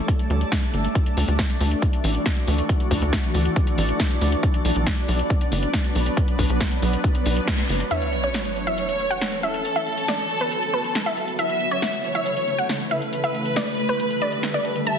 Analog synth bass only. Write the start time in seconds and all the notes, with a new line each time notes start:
0.30 D2
0.74 G1
1.17 D2
1.28 D2
1.60 D2
2.04 A1
2.48 D2
2.91 D2
3.02 D2
3.34 D2
3.78 A1
4.21 D2
4.65 B1
4.76 B1
5.08 B1
5.52 F#1
5.95 B1
6.39 B1
6.50 B1
6.82 B1
7.26 B1
7.69 F#1